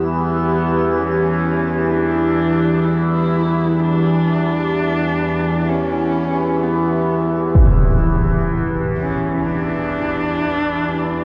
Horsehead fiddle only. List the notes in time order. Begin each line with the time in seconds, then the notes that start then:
0.04 B3
0.98 C#4
1.90 D4
2.85 E4
3.80 D4
5.69 C#4
6.63 B3
8.98 C#4
9.46 D4